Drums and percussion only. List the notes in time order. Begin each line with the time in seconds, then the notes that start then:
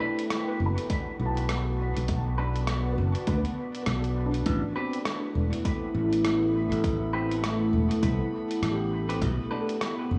0.19 closed hi-hat
0.30 cross-stick, closed hi-hat
0.78 closed hi-hat
0.90 kick, closed hi-hat
1.37 closed hi-hat
1.49 cross-stick, closed hi-hat
1.97 closed hi-hat
2.08 kick, closed hi-hat
2.56 closed hi-hat
2.67 cross-stick, closed hi-hat
3.15 closed hi-hat
3.27 kick, closed hi-hat
3.45 closed hi-hat
3.75 closed hi-hat
3.86 cross-stick, closed hi-hat
4.04 closed hi-hat
4.34 closed hi-hat
4.46 kick, closed hi-hat
4.93 closed hi-hat
5.05 cross-stick, closed hi-hat
5.53 closed hi-hat
5.65 kick, closed hi-hat
6.13 closed hi-hat
6.25 cross-stick, closed hi-hat
6.72 closed hi-hat
6.84 kick, closed hi-hat
7.31 closed hi-hat
7.44 cross-stick, closed hi-hat
7.91 closed hi-hat
8.03 kick, closed hi-hat
8.51 closed hi-hat
8.63 cross-stick, closed hi-hat
9.10 closed hi-hat
9.22 kick, closed hi-hat
9.69 closed hi-hat
9.81 cross-stick, closed hi-hat